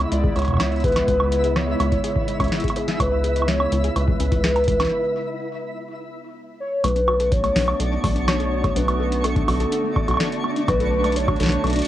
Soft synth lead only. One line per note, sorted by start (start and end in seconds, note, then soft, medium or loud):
0.12 0.38 D5 loud
0.36 0.84 C#5 loud
0.84 1.58 B4 loud
1.56 2.03 C#5 loud
2.04 2.78 C#5 loud
2.76 3.02 G#4 medium
3.00 3.50 B4 loud
3.48 3.95 C#5 loud
3.96 6.32 B4 loud
6.60 6.85 C#5 loud
6.84 7.33 B4 loud
7.32 7.79 C#5 loud
7.80 8.29 D5 loud
8.28 8.78 C#5 loud
8.76 9.26 B4 loud
9.24 10.44 A4 medium
10.68 11.17 B4 medium
11.16 11.65 C#5 medium
11.64 11.88 D5 loud